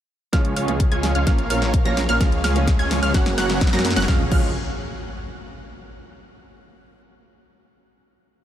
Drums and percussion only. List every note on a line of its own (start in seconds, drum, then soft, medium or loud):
0.33 kick loud
0.33 snare soft
0.33 closed hi-hat medium
0.45 closed hi-hat soft
0.56 open hi-hat loud
0.68 closed hi-hat soft
0.80 kick loud
0.80 closed hi-hat medium
0.92 closed hi-hat soft
1.03 snare medium
1.03 open hi-hat medium
1.15 closed hi-hat soft
1.27 kick loud
1.27 snare medium
1.27 closed hi-hat medium
1.39 closed hi-hat soft
1.50 open hi-hat loud
1.62 snare medium
1.62 closed hi-hat soft
1.74 kick loud
1.74 closed hi-hat medium
1.85 closed hi-hat soft
1.97 snare medium
1.97 open hi-hat loud
2.09 closed hi-hat soft
2.21 kick loud
2.21 snare medium
2.21 closed hi-hat medium
2.32 closed hi-hat soft
2.44 snare medium
2.44 open hi-hat loud
2.56 closed hi-hat soft
2.67 kick loud
2.67 snare medium
2.67 closed hi-hat medium
2.79 closed hi-hat soft
2.91 snare medium
2.91 open hi-hat loud
3.03 closed hi-hat soft
3.14 kick loud
3.14 snare medium
3.14 closed hi-hat medium
3.26 snare medium
3.26 closed hi-hat soft
3.38 snare medium
3.38 open hi-hat loud
3.50 snare medium
3.50 closed hi-hat soft
3.61 kick loud
3.61 snare medium
3.61 closed hi-hat medium
3.67 snare medium
3.73 snare medium
3.73 closed hi-hat soft
3.79 snare medium
3.85 snare loud
3.85 open hi-hat loud
3.91 snare loud
3.96 snare medium
3.96 closed hi-hat soft
4.02 snare medium
4.08 kick loud
4.08 snare medium
4.32 kick loud
4.32 crash medium